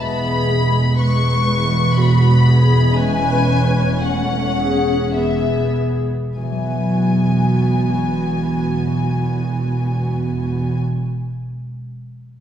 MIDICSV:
0, 0, Header, 1, 6, 480
1, 0, Start_track
1, 0, Key_signature, 4, "major"
1, 0, Tempo, 966184
1, 17, Time_signature, 3, 2, 24, 8
1, 977, Tempo, 1025641
1, 1937, Tempo, 1129944
1, 2417, Tempo, 1214575
1, 5284, End_track
2, 0, Start_track
2, 0, Title_t, "Violin section"
2, 0, Program_c, 0, 48
2, 25, Note_on_c, 0, 83, 56
2, 499, Note_off_c, 0, 83, 0
2, 501, Note_on_c, 0, 85, 59
2, 970, Note_off_c, 0, 85, 0
2, 983, Note_on_c, 0, 83, 60
2, 1442, Note_on_c, 0, 80, 73
2, 1449, Note_off_c, 0, 83, 0
2, 1932, Note_on_c, 0, 78, 67
2, 1936, Note_off_c, 0, 80, 0
2, 2415, Note_off_c, 0, 78, 0
2, 2415, Note_on_c, 0, 76, 50
2, 2650, Note_off_c, 0, 76, 0
2, 2901, Note_on_c, 0, 80, 45
2, 4644, Note_off_c, 0, 80, 0
2, 5284, End_track
3, 0, Start_track
3, 0, Title_t, "Viola section"
3, 0, Program_c, 1, 48
3, 12, Note_on_c, 1, 59, 44
3, 14, Note_on_c, 1, 68, 39
3, 237, Note_off_c, 1, 59, 0
3, 257, Note_on_c, 1, 56, 40
3, 473, Note_off_c, 1, 68, 0
3, 489, Note_off_c, 1, 56, 0
3, 495, Note_on_c, 1, 56, 36
3, 496, Note_on_c, 1, 71, 37
3, 967, Note_off_c, 1, 56, 0
3, 976, Note_on_c, 1, 66, 42
3, 978, Note_off_c, 1, 71, 0
3, 978, Note_on_c, 1, 59, 42
3, 1209, Note_off_c, 1, 66, 0
3, 1219, Note_on_c, 1, 68, 45
3, 1446, Note_off_c, 1, 59, 0
3, 1450, Note_off_c, 1, 68, 0
3, 1454, Note_on_c, 1, 61, 46
3, 1455, Note_on_c, 1, 71, 46
3, 1932, Note_off_c, 1, 61, 0
3, 1942, Note_off_c, 1, 71, 0
3, 1942, Note_on_c, 1, 57, 46
3, 1945, Note_on_c, 1, 61, 48
3, 2175, Note_off_c, 1, 57, 0
3, 2181, Note_on_c, 1, 68, 51
3, 2411, Note_off_c, 1, 61, 0
3, 2417, Note_off_c, 1, 68, 0
3, 2421, Note_on_c, 1, 68, 43
3, 2423, Note_on_c, 1, 59, 40
3, 2790, Note_off_c, 1, 68, 0
3, 2798, Note_off_c, 1, 59, 0
3, 2901, Note_on_c, 1, 66, 34
3, 2903, Note_on_c, 1, 59, 37
3, 4644, Note_off_c, 1, 66, 0
3, 4645, Note_off_c, 1, 59, 0
3, 5284, End_track
4, 0, Start_track
4, 0, Title_t, "Harp"
4, 0, Program_c, 2, 46
4, 0, Note_on_c, 2, 40, 42
4, 0, Note_on_c, 2, 56, 35
4, 0, Note_on_c, 2, 66, 35
4, 0, Note_on_c, 2, 71, 34
4, 1356, Note_off_c, 2, 40, 0
4, 1361, Note_on_c, 2, 40, 41
4, 1376, Note_off_c, 2, 56, 0
4, 1382, Note_on_c, 2, 56, 38
4, 1404, Note_on_c, 2, 61, 35
4, 1420, Note_off_c, 2, 71, 0
4, 1425, Note_on_c, 2, 71, 39
4, 1442, Note_off_c, 2, 66, 0
4, 2881, Note_off_c, 2, 40, 0
4, 2897, Note_on_c, 2, 40, 32
4, 2899, Note_off_c, 2, 61, 0
4, 2924, Note_on_c, 2, 52, 32
4, 2954, Note_on_c, 2, 54, 31
4, 2981, Note_on_c, 2, 59, 32
4, 3003, Note_off_c, 2, 71, 0
4, 3008, Note_on_c, 2, 71, 31
4, 3043, Note_off_c, 2, 56, 0
4, 4697, Note_off_c, 2, 40, 0
4, 4725, Note_off_c, 2, 52, 0
4, 4755, Note_off_c, 2, 54, 0
4, 4782, Note_off_c, 2, 59, 0
4, 4809, Note_off_c, 2, 71, 0
4, 5284, End_track
5, 0, Start_track
5, 0, Title_t, "Cello section"
5, 0, Program_c, 3, 48
5, 17, Note_on_c, 3, 40, 45
5, 2779, Note_off_c, 3, 40, 0
5, 2898, Note_on_c, 3, 40, 36
5, 4643, Note_off_c, 3, 40, 0
5, 5284, End_track
6, 0, Start_track
6, 0, Title_t, "Double bass section"
6, 0, Program_c, 4, 48
6, 21, Note_on_c, 4, 28, 44
6, 2781, Note_off_c, 4, 28, 0
6, 2900, Note_on_c, 4, 28, 36
6, 4644, Note_off_c, 4, 28, 0
6, 5284, End_track
0, 0, End_of_file